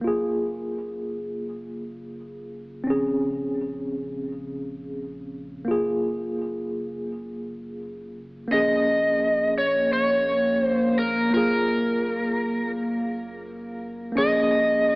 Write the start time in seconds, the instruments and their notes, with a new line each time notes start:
Already playing: ambient pad C#3
0.01 analog synth bass F#1, tine electric piano A#3 F4
0.07 tine electric piano G#4
2.84 analog synth bass A#1, tine electric piano C4 C#4
2.90 tine electric piano G#4
5.65 analog synth bass F#1, tine electric piano A#3 F4
5.71 tine electric piano G#4
8.48 analog synth bass A#1, tine electric piano A#3 C#4, ambient pad A#3
8.52 tine electric piano G#4, electric slide guitar D#5
9.58 electric slide guitar C#5
9.93 electric slide guitar C#5
10.65 electric slide guitar C5
10.99 electric slide guitar A#4
11.30 analog synth bass F#1, tine electric piano A#3 F4, electric slide guitar A#4
11.37 tine electric piano G#4
14.12 analog synth bass A#1, tine electric piano A#3 C#4
14.18 tine electric piano G#4, electric slide guitar D#5